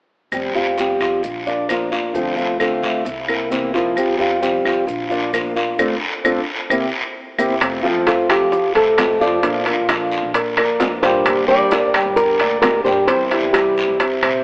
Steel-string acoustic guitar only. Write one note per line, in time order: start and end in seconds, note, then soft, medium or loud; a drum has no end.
0.32 0.54 F3 medium
0.32 0.54 G3 medium
0.32 0.55 C4 medium
0.32 0.54 G4 medium
0.55 0.78 G3 soft
0.55 0.77 C4 soft
0.55 0.77 G4 soft
0.78 1.22 F3 medium
0.78 1.23 G3 medium
0.78 1.23 C4 medium
0.78 1.24 G4 medium
1.24 muted steel-string acoustic guitar stroke soft
1.46 1.68 A#3 soft
1.46 1.68 D4 soft
1.46 1.68 F4 soft
1.69 1.91 F3 medium
1.69 1.91 A#3 medium
1.69 1.91 D4 medium
1.69 1.90 F4 medium
1.92 2.14 A#3 soft
1.92 2.14 D4 soft
1.92 2.13 F4 soft
2.14 2.36 D3 medium
2.14 2.36 A3 medium
2.14 2.37 C4 medium
2.14 2.35 F4 medium
2.36 2.58 A3 soft
2.36 2.59 C4 soft
2.36 2.59 F4 soft
2.59 3.04 D3 medium
2.59 3.04 A3 medium
2.59 3.05 C4 medium
2.59 3.05 F4 medium
3.05 muted steel-string acoustic guitar stroke soft
3.28 3.50 A#3 soft
3.28 3.50 C4 soft
3.28 3.50 E4 soft
3.50 3.72 C3 medium
3.50 3.73 E3 medium
3.50 3.73 A#3 medium
3.50 3.73 C4 medium
3.50 3.72 E4 medium
3.73 3.96 A#3 soft
3.73 3.96 C4 soft
3.73 3.95 E4 soft
3.96 4.18 F3 medium
3.96 4.18 G3 medium
3.96 4.18 C4 medium
3.96 4.17 G4 medium
4.18 4.40 G3 soft
4.18 4.40 C4 soft
4.18 4.41 G4 soft
4.40 4.86 F3 medium
4.40 4.86 G3 medium
4.40 4.87 C4 medium
4.40 4.87 G4 medium
4.87 muted steel-string acoustic guitar stroke medium
5.09 5.32 A#3 soft
5.09 5.32 D4 soft
5.09 5.32 F4 soft
5.32 5.55 F3 medium
5.32 5.55 A#3 medium
5.32 5.55 D4 medium
5.32 5.54 F4 medium
5.55 5.78 A#3 soft
5.55 5.78 D4 soft
5.55 5.78 F4 soft
5.79 5.94 A3 medium
5.79 5.93 C4 medium
5.79 5.94 D4 medium
6.24 6.39 A3 medium
6.24 6.39 C4 medium
6.24 6.39 D4 medium
6.70 6.85 A#3 medium
6.70 6.85 C4 medium
6.70 6.85 E4 medium
7.38 7.53 A#3 medium
7.38 7.53 C4 medium
7.38 7.53 E4 medium
7.61 7.83 C3 medium
7.61 7.83 F3 medium
7.61 7.82 A3 medium
7.61 7.82 C4 medium
7.61 7.81 F4 medium
7.82 8.51 F3 medium
7.82 8.51 A3 medium
7.82 8.51 C4 medium
7.82 8.52 F4 medium
8.51 muted steel-string acoustic guitar stroke medium
8.97 9.19 F3 soft
8.97 9.20 A3 soft
8.97 9.19 C4 medium
8.97 9.19 F4 soft
9.20 9.40 F3 medium
9.20 9.42 A3 medium
9.20 9.43 C4 medium
9.20 9.42 F4 medium
9.41 9.64 F3 medium
9.41 9.65 A#3 medium
9.41 9.65 D4 medium
9.41 9.64 F4 medium
9.65 10.34 A#3 soft
9.65 10.34 D4 medium
9.65 10.33 F4 medium
10.33 muted steel-string acoustic guitar stroke soft
10.79 11.02 F3 soft
10.79 11.02 A#3 soft
10.79 11.03 D4 soft
10.79 11.01 F4 soft
11.02 11.25 A#3 medium
11.02 11.25 D4 medium
11.02 11.25 F4 medium
11.25 11.48 D3 medium
11.25 11.48 G3 medium
11.25 11.48 A#3 medium
11.25 11.47 D4 medium
11.25 11.46 G4 medium
11.48 12.16 G3 medium
11.48 12.16 A#3 medium
11.48 12.16 D4 medium
11.48 12.17 G4 medium
12.16 muted steel-string acoustic guitar stroke medium
12.62 12.84 G3 soft
12.62 12.84 A#3 soft
12.62 12.84 D4 soft
12.62 12.83 G4 medium
12.84 13.07 G3 medium
12.84 13.08 A#3 medium
12.84 13.07 D4 medium
12.84 13.07 G4 medium
13.07 13.30 C3 medium
13.07 13.30 E3 medium
13.07 13.30 G3 medium
13.07 13.30 C4 medium
13.07 13.30 E4 medium
13.31 13.99 E3 medium
13.31 13.99 G3 medium
13.31 14.00 C4 medium
13.31 13.99 E4 medium
13.99 muted steel-string acoustic guitar stroke medium